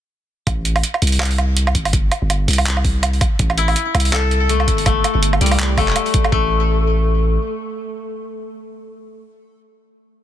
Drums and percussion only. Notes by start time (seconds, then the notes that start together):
0.47 kick, closed hi-hat, low woodblock
0.65 closed hi-hat
0.76 open hi-hat, low woodblock
0.83 closed hi-hat
0.94 low woodblock
1.02 closed hi-hat
1.07 closed hi-hat
1.12 open hi-hat
1.20 clap, low woodblock
1.25 closed hi-hat
1.31 open hi-hat
1.38 closed hi-hat, low woodblock
1.57 closed hi-hat
1.67 low woodblock
1.75 kick, closed hi-hat
1.85 open hi-hat, low woodblock
1.93 kick, closed hi-hat
2.12 closed hi-hat, low woodblock
2.30 closed hi-hat, low woodblock
2.48 closed hi-hat
2.51 closed hi-hat
2.53 closed hi-hat
2.56 closed hi-hat, open hi-hat, low woodblock
2.66 clap, closed hi-hat
2.77 low woodblock
2.85 kick, open hi-hat
3.03 closed hi-hat, low woodblock
3.13 open hi-hat
3.21 kick, closed hi-hat, low woodblock
3.39 kick, closed hi-hat
3.50 low woodblock
3.58 closed hi-hat
3.68 open hi-hat, low woodblock
3.76 closed hi-hat
3.95 closed hi-hat, low woodblock
4.00 closed hi-hat
4.05 open hi-hat
4.13 clap, closed hi-hat, low woodblock
4.31 closed hi-hat
4.49 closed hi-hat
4.60 low woodblock
4.68 kick, closed hi-hat
4.78 open hi-hat
4.86 kick, closed hi-hat, low woodblock
5.04 closed hi-hat, low woodblock
5.23 closed hi-hat
5.33 low woodblock
5.41 closed hi-hat
5.46 closed hi-hat
5.51 open hi-hat, low woodblock
5.59 clap, closed hi-hat
5.77 kick, open hi-hat, low woodblock
5.88 clap
5.96 closed hi-hat, low woodblock
6.06 open hi-hat
6.14 kick, closed hi-hat
6.24 low woodblock
6.32 kick